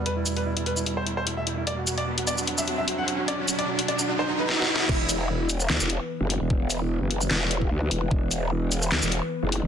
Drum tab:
CC |------------------------------------------------|------------------------------------------------|------------------------------------------------|x-----------------------------------------------|
HH |x-----x--x-----x--x-----x-----x-----x-----x-----|x-----x--x-----x--x-----x-----x-----x-----x-----|x-----x--x-----x--x-----------------------------|------x-----------x-----------x-----------x-----|
SH |------x--------------x--------------------------|------x-----------x--x-----x--------------------|------x--------------x--------------------------|------x-----------x--x-----x--------------------|
CP |------------------------------------------------|------------------------------------------------|------------------------------------------------|------------------------x-----------------------|
SD |------------------------------------------------|------------------------------------------------|------------------------------------o---o---o---|------------------------o-----------------------|
BD |------------------------------------------------|------------------------------------------------|------------------------------------------------|o-----------------------------------------------|

CC |------------------------------------------------|------------------------------------------------|
HH |------x-----------x-----------x-----------x-----|------x-----------x-----------x-----------x-----|
SH |------x--------------x--------------------------|------x-----------x--x-----x--------------------|
CP |------------------------x-----------------------|------------------------x-----------------------|
SD |------------------------o-----------------------|------------------------o-----------------------|
BD |o--------------------------------o--------------|o-----------------------------------------------|